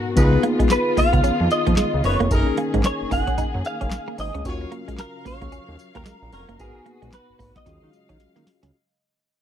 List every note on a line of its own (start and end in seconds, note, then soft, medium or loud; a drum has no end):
0.00 0.12 G#2 medium
0.00 0.14 B2 medium
0.00 0.13 B3 medium
0.00 0.13 D#4 medium
0.00 0.13 F#4 medium
0.00 0.15 F#4 medium
0.00 0.14 A#4 medium
0.16 0.37 C#2 loud
0.16 4.41 D#3 medium
0.16 2.27 B3 medium
0.16 2.29 B3 medium
0.16 0.42 D#4 loud
0.16 2.27 D#4 medium
0.16 0.42 F4 medium
0.16 2.29 F4 medium
0.16 2.27 F4 medium
0.16 2.28 G#4 medium
0.16 0.42 B4 loud
0.16 kick loud
0.16 closed hi-hat medium
0.16 tambourine medium
0.33 muted clean electric guitar stroke soft
0.43 0.53 A#3 medium
0.43 closed hi-hat medium
0.59 0.64 C#2 medium
0.59 0.66 G#3 medium
0.59 kick medium
0.59 closed hi-hat medium
0.69 0.98 B4 medium
0.69 muted clean electric guitar stroke soft
0.69 snare loud
0.69 clap medium
0.69 closed hi-hat medium
0.69 tambourine medium
0.97 1.04 C#2 soft
0.97 1.07 A#3 medium
0.97 1.47 F5 loud
0.97 kick medium
0.97 open hi-hat medium
0.97 tambourine medium
1.13 1.22 C#2 loud
1.13 1.20 B3 medium
1.13 kick loud
1.13 closed hi-hat medium
1.24 1.31 F2 medium
1.24 1.34 C#4 medium
1.24 closed hi-hat medium
1.24 tambourine medium
1.40 1.48 F2 loud
1.40 muted clean electric guitar stroke soft
1.51 2.05 D#5 loud
1.51 closed hi-hat medium
1.51 tambourine medium
1.67 1.75 F2 loud
1.67 1.73 A#3 medium
1.67 kick loud
1.67 closed hi-hat medium
1.77 1.87 G#3 medium
1.77 snare loud
1.77 clap medium
1.77 closed hi-hat medium
1.77 tambourine medium
1.94 2.02 C#2 medium
2.04 2.17 F#1 medium
2.04 2.22 D#4 medium
2.04 2.22 F4 medium
2.04 2.22 B4 medium
2.04 2.30 C#5 medium
2.04 muted clean electric guitar stroke soft
2.04 open hi-hat medium
2.04 tambourine medium
2.20 2.29 F1 medium
2.20 2.27 A#3 medium
2.20 closed hi-hat medium
2.30 2.44 F#1 loud
2.30 4.43 A#3 medium
2.30 4.41 C#4 medium
2.30 2.56 D#4 loud
2.30 4.41 D#4 medium
2.30 2.56 G#4 medium
2.30 4.43 G#4 medium
2.30 4.42 G#4 medium
2.30 2.40 A4 medium
2.30 2.56 A#4 loud
2.30 kick loud
2.30 closed hi-hat medium
2.30 tambourine medium
2.39 4.45 A#4 medium
2.47 muted clean electric guitar stroke soft
2.57 2.68 A#3 medium
2.57 closed hi-hat medium
2.74 2.82 G#1 loud
2.74 2.80 G#3 medium
2.74 kick medium
2.74 closed hi-hat medium
2.83 3.10 C#5 loud
2.83 muted clean electric guitar stroke soft
2.83 snare loud
2.83 clap medium
2.83 closed hi-hat medium
2.83 tambourine medium
3.01 3.05 F#1 medium
3.11 3.24 F#1 medium
3.11 3.21 A#3 medium
3.11 3.66 F#5 loud
3.11 kick loud
3.11 open hi-hat medium
3.11 tambourine medium
3.27 3.34 C#4 medium
3.27 kick loud
3.27 closed hi-hat medium
3.38 3.45 F#2 medium
3.38 3.48 D#4 medium
3.38 kick medium
3.38 closed hi-hat medium
3.38 tambourine medium
3.54 3.63 F#2 loud
3.54 muted clean electric guitar stroke soft
3.65 4.15 F5 loud
3.65 closed hi-hat medium
3.65 tambourine medium
3.81 3.89 F#1 medium
3.81 3.88 C#4 medium
3.81 kick medium
3.81 closed hi-hat medium
3.91 snare loud
3.91 clap medium
3.91 closed hi-hat medium
3.91 tambourine loud
4.08 4.14 A#3 medium
4.18 4.31 G#1 medium
4.18 4.44 D#5 medium
4.18 muted clean electric guitar stroke medium
4.18 open hi-hat medium
4.18 tambourine medium
4.35 4.43 C#2 medium
4.35 4.41 C#4 medium
4.35 closed hi-hat medium
4.45 4.66 D#2 loud
4.45 6.57 C#3 medium
4.45 6.57 F#3 medium
4.45 6.55 C#4 medium
4.45 4.70 F4 loud
4.45 6.56 F4 medium
4.45 4.70 F#4 medium
4.45 6.56 F#4 medium
4.45 6.56 A#4 medium
4.45 4.71 C#5 loud
4.45 6.57 F5 medium
4.45 kick loud
4.45 closed hi-hat medium
4.45 tambourine medium
4.61 muted clean electric guitar stroke soft
4.72 4.82 A#3 medium
4.72 closed hi-hat medium
4.88 4.92 C#2 soft
4.88 4.95 G#3 medium
4.88 kick medium
4.88 closed hi-hat medium
4.98 5.26 A#4 medium
4.98 muted clean electric guitar stroke soft
4.98 snare loud
4.98 clap medium
4.98 closed hi-hat medium
4.98 tambourine medium
5.25 5.32 C#2 soft
5.25 5.35 A#3 medium
5.25 5.92 C#5 medium
5.25 kick medium
5.25 open hi-hat medium
5.25 tambourine medium
5.42 5.50 C#2 medium
5.42 5.48 A#3 medium
5.42 kick loud
5.42 closed hi-hat medium
5.52 5.59 D#2 medium
5.52 5.62 C#4 medium
5.52 closed hi-hat medium
5.52 tambourine medium
5.68 5.77 D#2 medium
5.68 muted clean electric guitar stroke medium
5.79 closed hi-hat medium
5.79 tambourine medium
5.95 6.04 D#2 medium
5.95 6.02 A#3 medium
5.95 6.30 A#4 loud
5.95 kick medium
5.95 closed hi-hat medium
6.05 6.16 G#3 medium
6.05 snare loud
6.05 clap medium
6.05 closed hi-hat medium
6.05 tambourine medium
6.22 6.30 A#1 medium
6.32 6.45 F1 medium
6.32 6.50 F4 medium
6.32 6.50 F#4 medium
6.32 6.58 A#4 medium
6.32 6.50 C#5 medium
6.32 muted clean electric guitar stroke soft
6.32 open hi-hat medium
6.32 tambourine medium
6.49 6.57 F#1 medium
6.49 6.55 A#3 medium
6.49 closed hi-hat medium
6.59 6.72 G#1 loud
6.59 7.66 B2 medium
6.59 7.64 B3 medium
6.59 6.84 B3 loud
6.59 7.66 B3 medium
6.59 7.64 D#4 medium
6.59 6.85 F#4 medium
6.59 7.66 F#4 medium
6.59 7.65 F#4 medium
6.59 7.10 G#4 loud
6.59 6.85 A#4 loud
6.59 7.65 B4 medium
6.59 kick loud
6.59 closed hi-hat medium
6.59 tambourine medium
6.75 muted clean electric guitar stroke soft
6.86 6.96 A#3 medium
6.86 closed hi-hat medium
7.02 7.11 A#1 medium
7.02 7.09 G#3 medium
7.02 kick medium
7.02 closed hi-hat medium
7.12 7.53 B4 loud
7.12 muted clean electric guitar stroke soft
7.12 snare loud
7.12 clap medium
7.12 closed hi-hat medium
7.12 tambourine medium
7.29 7.34 G#1 medium
7.39 7.52 G#1 medium
7.39 7.49 A#3 medium
7.39 kick medium
7.39 open hi-hat medium
7.39 tambourine medium
7.56 7.62 B3 medium
7.56 8.43 D#5 medium
7.56 kick loud
7.56 snare medium
7.56 closed hi-hat medium
7.66 7.79 D#2 loud
7.66 8.73 C#3 medium
7.66 8.73 F#3 medium
7.66 8.73 G#3 medium
7.66 8.71 C#4 medium
7.66 7.76 D#4 medium
7.66 8.72 F4 medium
7.66 8.72 F#4 medium
7.66 8.72 G#4 medium
7.66 8.73 F5 medium
7.66 kick medium
7.66 snare medium
7.66 closed hi-hat medium
7.66 tambourine medium
7.82 7.91 D#3 loud
7.82 muted clean electric guitar stroke soft
7.93 closed hi-hat medium
7.93 tambourine medium
8.09 8.18 D#3 loud
8.09 8.16 C#4 medium
8.09 kick loud
8.09 closed hi-hat medium
8.20 snare medium
8.20 closed hi-hat medium
8.36 8.45 D#3 loud
8.36 8.43 A#3 medium
8.36 snare medium
8.47 muted clean electric guitar stroke soft
8.47 snare medium
8.47 open hi-hat medium
8.63 8.71 C#2 medium
8.63 8.70 C#4 medium
8.63 snare loud
8.63 closed hi-hat medium